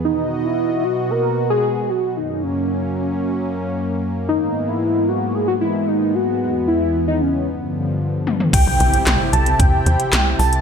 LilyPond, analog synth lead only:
\new Staff \with { instrumentName = "Analog synth lead" } { \time 4/4 \key b \major \tempo 4 = 113 dis'8. e'8. fis'8 ais'8. gis'8. fis'8 | dis'8 cis'2 r4. | dis'8. e'8. fis'8 gis'16 fis'16 e'8 dis'8 fis'8~ | fis'8 e'8. dis'16 cis'8 r2 |
\key c \major g''4. a''8 g''4. a''8 | }